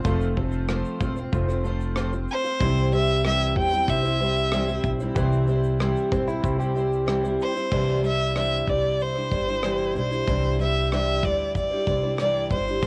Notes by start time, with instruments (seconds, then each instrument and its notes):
Already playing: grand piano A3 C4 F4 C5
0.04 upright bass F1, twelve-string acoustic guitar F3 A3 C4 F4 C5, grand piano A3 C4 F4 C5, kick, shaker
0.21 shaker
0.36 twelve-string acoustic guitar A3 C4 F4 C5, kick
0.52 shaker
0.68 twelve-string acoustic guitar F3 A3 C4 F4 C5, cross-stick, shaker
0.85 shaker
1.00 upright bass E1, twelve-string acoustic guitar A3 C4 F4 C5, kick, shaker
1.16 twelve-string acoustic guitar C4 F4 C5, shaker
1.32 upright bass F1, grand piano A3 C4 F4 C5, kick, shaker
1.48 twelve-string acoustic guitar C4 F4 C5, cross-stick, shaker
1.64 twelve-string acoustic guitar A3 C4 F4 C5, shaker
1.81 shaker
1.96 twelve-string acoustic guitar F3 A3 C4 F4 C5, cross-stick, shaker
2.13 twelve-string acoustic guitar C4 F4 C5, shaker
2.28 violin C5, shaker
2.44 twelve-string acoustic guitar C4 F4 C5, shaker
2.60 upright bass C2, twelve-string acoustic guitar C3 E3 G3 C4 E4 C5, grand piano G3 C4 E4 C5, kick, shaker
2.77 shaker
2.92 twelve-string acoustic guitar G3 C4 E4 C5, violin E5, shaker
3.09 shaker
3.23 twelve-string acoustic guitar C3 E3 G3 C4 E4 C5, violin E5, cross-stick, shaker
3.41 shaker
3.55 upright bass E2, twelve-string acoustic guitar G3 C4 E4 C5, violin G5, kick
3.71 twelve-string acoustic guitar G3 C4 E4 C5, shaker
3.88 upright bass C2, grand piano G3 C4 E4 C5, violin E5, kick, shaker
4.03 twelve-string acoustic guitar G3 C4 E4 C5, shaker
4.20 twelve-string acoustic guitar G3 C4 E4 C5
4.37 shaker
4.52 twelve-string acoustic guitar C3 E3 G3 C4 E4 C5, cross-stick, shaker
4.68 twelve-string acoustic guitar G3 C4 E4 C5, shaker
4.84 upright bass B1, kick, shaker
5.00 twelve-string acoustic guitar G3 C4 E4 C5, shaker
5.14 upright bass C2, twelve-string acoustic guitar C3 E3 G3 C4 E4 C5, grand piano G3 C4 E4 B4, kick, shaker
5.23 grand piano C5
5.32 shaker
5.47 twelve-string acoustic guitar G3 C4 E4 C5, shaker
5.63 shaker
5.79 twelve-string acoustic guitar C3 E3 G3 C4 E4 C5, cross-stick, shaker
5.97 shaker
6.11 upright bass B1, twelve-string acoustic guitar G3 C4 E4 C5, kick, shaker
6.27 twelve-string acoustic guitar G3 C4 E4 C5, shaker
6.42 upright bass C2, grand piano G3 C4 E4 C5, kick, shaker
6.58 twelve-string acoustic guitar G3 C4 E4 C5, clean electric guitar G4, shaker
6.74 twelve-string acoustic guitar G3 C4 E4 C5, shaker
6.93 shaker
7.06 twelve-string acoustic guitar C3 E3 G3 C4 E4 C5, cross-stick, shaker
7.23 twelve-string acoustic guitar G3 C4 E4 C5, shaker
7.41 violin C5, shaker
7.55 twelve-string acoustic guitar G3 C4 E4 C5, shaker
7.71 upright bass C2, twelve-string acoustic guitar C3 E3 G3 D4 E4 C5, kick, crash
8.02 twelve-string acoustic guitar G3 D4 E4 C5, shaker
8.07 violin E5
8.35 twelve-string acoustic guitar C3 E3 G3 D4 E4 C5, violin E5, cross-stick, shaker
8.67 upright bass C2, twelve-string acoustic guitar G3 D4 E4 C5, violin D5, kick, shaker
9.00 violin C5, shaker
9.15 twelve-string acoustic guitar G3 D4 E4 C5, cross-stick
9.31 upright bass G1, twelve-string acoustic guitar G3 D4 E4 C5, kick, shaker
9.47 twelve-string acoustic guitar G3 D4 E4 C5
9.63 twelve-string acoustic guitar C3 E3 G3 D4 E4 C5, cross-stick, shaker
9.95 upright bass B1, twelve-string acoustic guitar G3 D4 E4 C5, violin C5, shaker
10.10 twelve-string acoustic guitar G3 D4 E4 C5, shaker
10.27 upright bass C2, twelve-string acoustic guitar C3 E3 G3 D4 E4 C5, kick, shaker
10.59 twelve-string acoustic guitar G3 D4 E4 C5, violin E5, shaker
10.91 twelve-string acoustic guitar C3 E3 G3 D4 E4 C5, violin E5, cross-stick, shaker
11.23 upright bass D2, twelve-string acoustic guitar G3 D4 E4 C5, violin D5, kick, shaker
11.55 violin D5, kick, shaker
11.71 twelve-string acoustic guitar G3 D4 E4 C5
11.87 upright bass C2, twelve-string acoustic guitar G3 D4 E4 C5, kick, shaker
12.03 twelve-string acoustic guitar G3 D4 E4 C5
12.18 twelve-string acoustic guitar C3 E3 G3 D4 E4 C5, violin D5, cross-stick, shaker
12.51 upright bass G1, twelve-string acoustic guitar G3 D4 E4 C5, violin C5, kick, shaker
12.67 twelve-string acoustic guitar G3 D4 E4 C5, shaker
12.83 upright bass A1, twelve-string acoustic guitar A2, kick, shaker